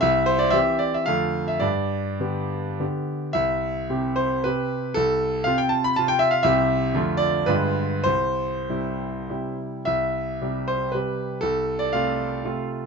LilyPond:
<<
  \new Staff \with { instrumentName = "Grand piano" } { \time 3/4 \key c \major \tempo 4 = 112 e''8 c''16 d''16 e''8 d''16 e''16 f''8. e''16 | d''2 r4 | e''4. c''8 b'4 | a'4 f''16 g''16 a''16 b''16 a''16 g''16 e''16 f''16 |
e''4. d''8 b'4 | c''2~ c''8 r8 | e''4. c''8 b'4 | a'8. d''16 f''4. r8 | }
  \new Staff \with { instrumentName = "Grand piano" } { \clef bass \time 3/4 \key c \major c,4 <e c' g'>4 <f, d a a'>4 | g,4 <d b g'>4 <d b g'>4 | c,4 <c c' g'>4 <c c' g'>4 | c,4 <c c' f'>4 <c c' f'>4 |
<c, c c' g'>4 <f, d a f'>4 <g, d aes f'>4 | c,4 <c g e'>4 <c g e'>4 | c,4 <c g g'>4 <c g g'>4 | c,4 <c a f'>4 <c a f'>4 | }
>>